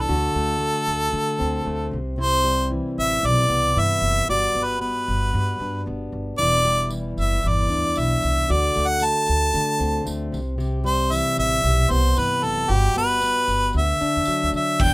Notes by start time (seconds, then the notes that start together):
Already playing: E2 G3 D4
0.01 A4
0.09 D2 D3 F#4
0.35 D2 A3
0.60 A3
0.87 D2
1.12 D3
1.39 D2 C4
1.65 D2 A3
1.91 C2 C3
2.18 C3 E4 C5
2.44 G3
2.71 E3
2.98 A1 E5
3.22 B1 C3
3.26 D5
3.49 C2 B3
3.76 G2 E3 E5
4.01 F#1
4.29 G1 G3 F#4 D5
4.55 G1 B3
4.64 B4
4.81 B3 B4
5.08 G1
5.33 G2 G3
5.60 G2 D4
5.86 G1 B3
6.12 G1
6.38 E1 E2 E4 D5, tambourine
6.64 G3, tambourine
6.90 E3, tambourine
7.17 F#1 E5, tambourine
7.43 G1 E2, tambourine
7.48 D5
7.69 D2 D4, tambourine
7.96 B1 E3 E5, tambourine
8.22 C2, tambourine
8.48 D2 D3 F#4 D5, tambourine
8.74 D2 A3, tambourine
8.88 F#5
9.00 A3, tambourine
9.04 A5
9.26 D2, tambourine
9.53 D3, tambourine
9.79 D2 C4, tambourine
10.06 D2 A3, tambourine
10.32 C2 C3, tambourine
10.58 C3 G4, tambourine
10.84 G3 C5, tambourine
11.11 E3 E5, tambourine
11.38 A1 E5, tambourine
11.64 B1 C3, tambourine
11.90 C2 B3 C5, tambourine
12.17 G2 E3 B4, tambourine
12.43 F#1 A4, tambourine
12.69 G1 G3 F#4 G4, tambourine
12.95 G1 B3 B4, tambourine
13.22 B3, tambourine
13.48 G1, tambourine
13.73 D2 D3, tambourine
13.77 E5
14.00 D4, muted upright bass stroke, tambourine
14.16 E2
14.25 F#3, muted upright bass stroke, tambourine
14.43 D2
14.52 D3 E5, tambourine
14.79 E1 E2 G5, kick, crash